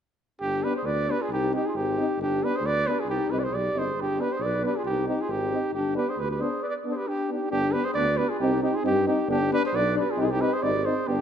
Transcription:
0.40 G1 D4 G4
0.64 B3 D4 G4 B4
0.76 G#4 C5
0.83 D2 B4 D5
1.08 B3 D4 G4 B4
1.20 F4 G#4
1.29 C2 D#4 G4
1.51 C4 D#4 G4
1.66 F4 G#4
1.74 G#1 D#4 G4
1.98 C4 D#4
2.17 G1
2.22 D4 G4
2.43 B3 D4 G4 B4
2.55 G#4 C5
2.61 D2
2.66 B4 D5
2.86 B3 D4 B4
2.90 G4
3.00 F4 G#4
3.06 C2 D#4 G4
3.28 C2 C4 D#4 B4
3.33 G4
3.38 B4 D5
3.44 G#4 C5
3.51 B1 D5
3.57 G4
3.73 G1 C4 D#4
3.78 G#4 C5
3.96 G1
4.01 D4 G4
4.19 B3 D4 G4 B4
4.32 C5
4.37 B1 G#4
4.42 B4 D5
4.63 B3 D4 B4
4.67 G4
4.76 F4 G#4
4.84 C2 G4
4.89 D#4
5.07 C4 D#4 G4
5.21 F4 G#4
5.28 G#1 G4
5.33 D#4
5.51 C4 D#4
5.73 G1 D4 G4
5.95 B3 D4 G4 B4
6.09 G#4 C5
6.17 D2 B4
6.22 G4
6.31 G4 B4
6.40 B3 D4 G#4 C5
6.63 G#4 B4 D5
6.68 B4 D5
6.85 B3 D4
6.91 G#4 C5
6.96 G4 B4
7.07 D4 G4
7.29 B3 D4 D#4 G4
7.50 G1 B3 D4 G4
7.73 B3 D4 G4 B4
7.85 G#4 C5
7.94 D2 B3 D4 B4 D5
8.17 B3 D4 G4 B4
8.29 F4 G#4
8.40 C2 C4 D#4 G4
8.61 C4 D#4 G4
8.74 F4 G#4
8.82 G2 C4 D#4 G4
9.06 C4 D#4 G4
9.28 G1 B3 D4 G4
9.51 B3 D4 G4 B4
9.66 G#4 C5
9.72 B1 B3 D4 B4 D5
9.94 B3 D4
9.98 G4 B4
10.11 F4 G#4
10.17 C2 C4 D#4 G4
10.21 D#4 G#4
10.26 F4
10.31 D#4 G4
10.40 C4 D#4 G4 B4
10.53 G#4 C5
10.62 G#1 C4 D#4 G4 D5
10.85 C4 D#4 G#4 C5
11.07 G1 B3 D4 G4

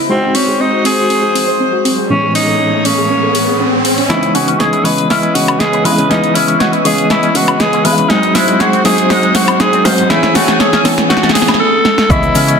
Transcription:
0.09 G#3 C4 D#4 F#4 C5, riser
0.23 F#4
0.35 C4 C#4, open hi-hat
0.48 G#4
0.60 C4 D#4
0.73 C5
0.85 C4 G#4, open hi-hat
0.98 F#4
1.10 C4, open hi-hat
1.23 G#4
1.35 C4, open hi-hat
1.48 C5
1.60 C4
1.73 F#4
1.85 C4, open hi-hat
1.98 G#4
2.09 A2 E3 G#3 B3 C#4 G#4 C#5
2.23 G#4
2.35 C#4 D#4, open hi-hat
2.48 A4
2.60 C#4
2.73 C#5
2.85 C#4, open hi-hat
2.98 G#4
3.10 C#4
3.23 A4
3.35 G#4, open hi-hat
3.48 G#4
3.60 C#4
3.73 G#4
3.85 G#4, open hi-hat
3.98 C#4, open hi-hat
4.09 C#2 E3 G#3 B3 C#4 D#4 E4 B4 D#5, snare, closed hi-hat
4.23 closed hi-hat
4.34 C#3 C#4 F#4, open hi-hat
4.48 C#4, closed hi-hat
4.59 C#2 G#4 C#5, snare, closed hi-hat
4.73 E4, closed hi-hat
4.84 C#3 E3 G#3 B3 B4 C#5 D#5, open hi-hat
4.98 closed hi-hat
5.10 C#2 C#4 E4, snare, open hi-hat
5.23 C#4, closed hi-hat
5.34 C#3 F#4, open hi-hat
5.48 closed hi-hat, high woodblock
5.59 C#2 G#4, snare, closed hi-hat
5.73 E4, closed hi-hat
5.85 C#3 E3 G#3 B3 E4 B4, open hi-hat
5.98 C#3, closed hi-hat
6.09 C#2 E3 G#3 B3 C#4 D#4 D#5, snare, closed hi-hat
6.24 closed hi-hat
6.35 C#3 C#4 E4, open hi-hat
6.47 C#4, closed hi-hat
6.60 C#2 F#4 C#5, snare, closed hi-hat
6.72 E4, closed hi-hat
6.85 C#3 E3 G#3 B3 G#4 C#5 D#5, open hi-hat
6.98 closed hi-hat
7.10 C#2 C#4 E4, snare, closed hi-hat
7.23 C#4, closed hi-hat
7.35 C#3 F#4, open hi-hat
7.48 closed hi-hat, high woodblock
7.60 C#2 G#4, snare, closed hi-hat
7.73 E4, closed hi-hat
7.85 C#3 E3 G#3 B3 E4 B4, open hi-hat
7.98 C#3, closed hi-hat
8.09 G#1 F#3 G#3 C4 D#4 F#4 C5, snare, closed hi-hat
8.23 closed hi-hat
8.35 G#2 G#3 E4, snare, open hi-hat
8.48 G#3, closed hi-hat
8.60 G#1 F#4 G#4, snare, closed hi-hat
8.73 C4, closed hi-hat
8.84 G#2 F#3 G#3 C4 D#4 G#4, snare, open hi-hat
8.98 closed hi-hat
9.10 G#1 G#3 D#4, snare, open hi-hat
9.23 G#3, closed hi-hat
9.35 G#2 F#4, snare, open hi-hat
9.48 closed hi-hat, high woodblock
9.60 G#1 G#4, snare, closed hi-hat
9.73 C4, closed hi-hat
9.85 G#2 D#3 F#3 G#3 C4 F#4 C5, snare, open hi-hat
9.98 G#2, closed hi-hat
10.09 A1 E3 A3 C#4 E4 G#4 C#5 G#5, snare, closed hi-hat
10.23 snare, closed hi-hat
10.35 A2 A3 F#4, snare, open hi-hat
10.48 A3, snare, closed hi-hat
10.60 A1 G#4 A4, snare, closed hi-hat
10.73 C#4, snare, closed hi-hat
10.83 A2 E3 B3 C#4 A4, snare, open hi-hat
10.98 snare, closed hi-hat
11.09 A1 A3 F#4, snare, closed hi-hat
11.17 snare
11.22 A3, snare, closed hi-hat
11.29 snare
11.34 A2 G#4, snare, open hi-hat
11.42 snare
11.48 snare, closed hi-hat, high woodblock
11.54 snare
11.60 A4
11.85 snare
11.98 snare
12.09 C#2 E3 G#3 B3 C#4 E4 B4 D#5, kick, closed hi-hat, shaker
12.23 closed hi-hat, shaker
12.34 C#3 C#4, open hi-hat, shaker
12.48 C#4, closed hi-hat, shaker

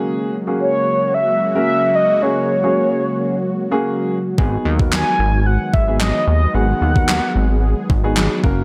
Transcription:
Already playing: C#3 F#3 G#3 A#3 C#4 F#4 G#4
0.47 A#3 C#4 F#4 G#4
0.60 C#5
1.14 E5
1.55 A#3 C#4 F#4 A#4 E5
1.95 D#5
2.22 A#3 C#4 F#4 G#4 C#5
2.63 A#3 C#4 F#4 G#4
3.71 A#3 C#4 F#4 G#4
4.38 G#1 D#3 G#3 B3 D#4 F#4 G#4, kick
4.65 D#2
4.79 B3 D#4 F#4 A#4, kick
4.92 G#5, snare, clap
5.19 G#1
5.46 F#5
5.73 G#1 E5, kick
5.87 B3 D#4 F#4 G#4
6.00 D#5, snare, clap
6.27 D#2 D#5
6.54 G#1 B3 D#4 F#4 G#4 F#5
6.82 D#2
6.96 B3 D#4 F#4 A#4, kick
7.09 snare, clap
7.36 G#1
7.90 G#1, kick
8.04 B3 D#4 F#4 G#4
8.17 snare, clap
8.43 F#1 A#2 C#3 A#3 C#4 F#4 A#4, kick

